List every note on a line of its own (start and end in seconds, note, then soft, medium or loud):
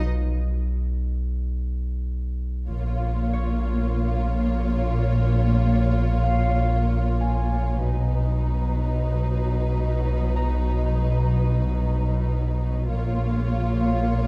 0.00 2.69 B1 medium
2.70 7.78 A#1 soft
2.70 7.85 A#1 medium
2.70 7.78 A#2 soft
2.70 7.78 A#3 soft
2.70 7.79 F4 soft
2.70 7.79 C#5 soft
3.33 7.23 C#5 soft
6.24 8.14 F5 soft
7.21 9.11 G#5 soft
7.82 12.89 B1 soft
7.82 12.91 B1 medium
7.82 12.89 B2 soft
7.82 12.85 F#3 soft
7.82 12.85 D#4 soft
7.82 12.85 B4 soft
10.36 14.26 A#5 soft
12.89 14.27 A#1 medium
12.89 14.27 A#2 medium
12.89 14.27 A#3 medium
12.89 14.27 F4 medium
12.89 14.27 C#5 medium